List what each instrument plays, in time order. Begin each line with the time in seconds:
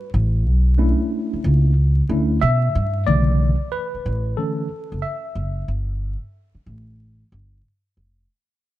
0.14 upright bass A1
0.46 upright bass B1
0.78 tine electric piano A3 C#4 D4 E4
1.34 muted upright bass stroke
1.44 upright bass C#2
2.09 upright bass D2, tine electric piano A3 C#4 D4 E4
2.41 upright bass B2, tine electric piano E5
2.75 upright bass G2
3.07 upright bass B1, tine electric piano C#3 D3 E3 A3 D5
3.72 tine electric piano B4
3.94 muted upright bass stroke
4.06 upright bass A1
4.37 tine electric piano D3 E3 A3 C#4 A4
4.92 upright bass F#1
5.02 tine electric piano E5
5.35 upright bass F#1
5.68 upright bass G1
6.55 muted upright bass stroke
6.66 upright bass A1
7.32 upright bass G1
7.97 upright bass F1